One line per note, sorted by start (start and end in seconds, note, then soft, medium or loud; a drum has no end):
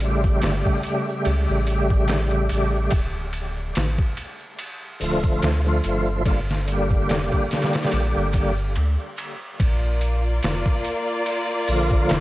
0.00 0.40 A1 medium
0.00 2.90 C#3 medium
0.00 2.91 G3 medium
0.00 ride medium
0.00 shaker medium
0.04 2.92 A3 medium
0.04 2.93 G4 medium
0.24 kick medium
0.24 triangle medium
0.24 shaker soft
0.42 0.63 G1 medium
0.42 snare loud
0.42 ride medium
0.42 shaker soft
0.66 kick medium
0.83 ride medium
0.83 shaker medium
1.08 shaker soft
1.25 1.47 C#2 medium
1.25 ride medium
1.25 shaker medium
1.50 2.48 A1 loud
1.67 ride medium
1.67 shaker medium
1.90 kick medium
1.90 shaker soft
2.08 snare loud
2.08 ride medium
2.08 shaker soft
2.31 ride soft
2.31 shaker soft
2.49 2.89 A1 medium
2.49 ride medium
2.49 shaker medium
2.75 shaker soft
2.91 3.73 D1 medium
2.91 kick loud
2.91 ride medium
2.91 shaker soft
3.33 ride medium
3.33 shaker medium
3.57 triangle medium
3.57 shaker soft
3.75 3.97 A1 medium
3.75 snare loud
3.75 ride medium
3.75 shaker soft
3.98 kick medium
4.17 ride medium
4.17 shaker medium
4.40 shaker soft
4.59 ride medium
4.59 shaker soft
5.00 5.38 D1 medium
5.00 5.60 D3 medium
5.00 5.60 F3 medium
5.00 5.61 A3 medium
5.00 5.62 F4 medium
5.00 open hi-hat medium
5.00 shaker medium
5.23 kick medium
5.23 shaker soft
5.41 5.80 D2 medium
5.41 snare loud
5.41 ride medium
5.41 shaker soft
5.65 6.21 D3 medium
5.65 6.22 F3 medium
5.65 6.23 A3 medium
5.65 6.23 F4 loud
5.65 shaker soft
5.83 7.06 G1 medium
5.83 ride medium
5.83 shaker medium
6.06 shaker soft
6.25 6.40 D3 medium
6.25 6.40 G3 medium
6.25 6.41 A#3 medium
6.25 6.41 F4 medium
6.25 kick loud
6.25 ride medium
6.25 shaker soft
6.48 snare soft
6.48 shaker soft
6.66 8.52 D3 medium
6.66 8.53 G3 medium
6.66 ride medium
6.66 shaker medium
6.70 8.54 A#3 medium
6.70 8.55 G4 medium
6.90 kick medium
6.90 triangle medium
6.90 shaker soft
7.09 7.30 F1 medium
7.09 snare loud
7.09 ride medium
7.09 shaker soft
7.32 kick medium
7.32 shaker soft
7.51 snare medium
7.51 ride medium
7.51 shaker medium
7.62 snare medium
7.62 ride medium
7.73 snare medium
7.73 ride medium
7.73 shaker soft
7.83 snare medium
7.83 ride medium
7.92 8.13 A#1 medium
7.92 ride medium
7.92 triangle medium
7.92 shaker soft
8.15 8.76 G1 medium
8.15 shaker soft
8.32 kick medium
8.32 ride medium
8.32 shaker medium
8.57 shaker soft
8.75 8.97 D2 medium
8.75 ride medium
8.75 shaker soft
8.98 shaker soft
9.17 ride medium
9.17 shaker medium
9.40 shaker soft
9.59 10.40 A#1 medium
9.59 12.20 A#3 medium
9.59 12.20 F4 medium
9.59 12.20 D5 medium
9.59 kick loud
9.59 ride medium
9.59 shaker soft
10.01 ride medium
10.01 shaker medium
10.23 triangle medium
10.23 shaker soft
10.42 10.64 F1 medium
10.42 snare loud
10.42 ride medium
10.42 shaker soft
10.66 kick medium
10.84 ride medium
10.84 shaker medium
11.07 shaker soft
11.26 ride medium
11.26 shaker soft
11.68 12.06 A#1 medium
11.68 12.20 D3 medium
11.68 12.20 F3 medium
11.68 12.20 A#3 medium
11.68 12.20 F4 loud
11.68 open hi-hat medium
11.68 shaker medium
11.91 kick medium
11.91 shaker soft
12.09 12.20 F1 medium
12.09 snare loud
12.09 ride medium
12.09 shaker soft